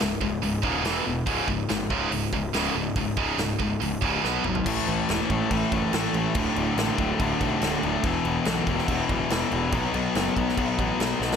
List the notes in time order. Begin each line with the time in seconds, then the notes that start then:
0.00 C#1 C#2 G#2, snare
0.21 C#1 C#2 G#2, kick
0.43 C#1 C#2 G#2, open hi-hat
0.63 D#1 C#2 G#2 C#3, kick
0.84 E1 E2 B2 E3, snare, open hi-hat
1.05 E1 E2 B2
1.26 C#1 C#2 G#2 C#3, kick, open hi-hat
1.48 C#1 C#2 G#2, kick
1.69 G#1 C#2 G#2, snare, open hi-hat
1.90 C#1 C#2 G#2 C#3, kick
2.11 C#1 C#2 G#2, open hi-hat
2.33 C#1 C#2 G#2, kick
2.54 C#1 C#2 G#2 C#3, snare, open hi-hat
2.75 C#1 C#2 G#2
2.96 C#1 C#2 G#2, kick, open hi-hat
3.17 C#1 C#2 G#2 C#3, kick
3.38 C#1 C#2 G#2, snare, open hi-hat
3.60 C#1 C#2 G#2, kick
3.81 C#1 C#2 G#2, open hi-hat
4.02 C#1 C#2 G#2 C#3, kick
4.23 B1 B2 F#3 B3, snare
4.44 G#1 B2 F#3, mid tom
4.55 floor tom
4.66 A1 A2 E3 A3, kick, crash
4.87 A1 A2 E3 A3, crash
5.08 E1 A2 E3 A3, snare, crash
5.30 A1 A2 E3 A3, kick, crash
5.51 A1 A2 E3 A3, kick, crash
5.72 F#1 A2 E3 A3, kick, crash
5.93 A1 A2 E3 A3, snare, crash
6.14 A1 A2 E3 A3, crash
6.35 D1 D2 A2 D3, kick, crash
6.56 D1 D2 A2 D3, crash
6.76 A1 D2 A2 D3, snare, crash
6.98 D1 D2 A2 D3, kick, crash
7.19 D1 D2 A2 D3, kick, crash
7.41 B1 D2 A2 D3, kick, crash
7.61 D1 D2 A2 D3, snare, crash
7.83 D1 D2 A2 D3, crash
8.04 E1 E2 B2 E3, kick, crash
8.25 E1 E2 B2 E3, crash
8.45 B1 E2 B2 E3, snare, crash
8.67 E1 E2 B2 E3, kick, crash
8.79 snare
8.88 E1 E2 B2 E3, kick, crash
9.09 D1 E2 B2 E3, kick, crash
9.30 E1 E2 B2 E3, snare, crash
9.52 E1 E2 B2 E3, crash
9.72 B1 B2 F#3 B3, kick, crash
9.94 B1 B2 F#3 B3, crash
10.15 F#1 B2 F#3 B3, snare, crash
10.36 B1 B2 F#3 B3, kick, crash
10.49 snare
10.58 B1 B2 F#3 B3, kick, crash
10.78 A1 B2 F#3 B3, kick, crash
11.00 B1 B2 F#3 B3, snare, crash
11.20 B1 B2 F#3 B3, snare
11.32 snare